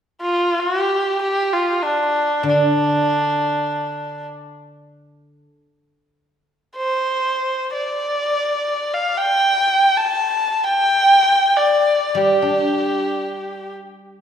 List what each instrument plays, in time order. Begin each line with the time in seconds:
0.22 erhu F4
0.60 erhu F#4
0.79 erhu G4
1.22 erhu G4
1.54 erhu F4
1.83 erhu D4
2.43 guzheng D3
2.49 erhu D4
6.77 erhu C5
7.73 erhu D5
8.94 erhu F5
9.18 erhu G5
9.96 erhu A5
10.64 erhu G5
11.57 erhu D5
12.15 guzheng G3, erhu G4
12.42 guzheng D4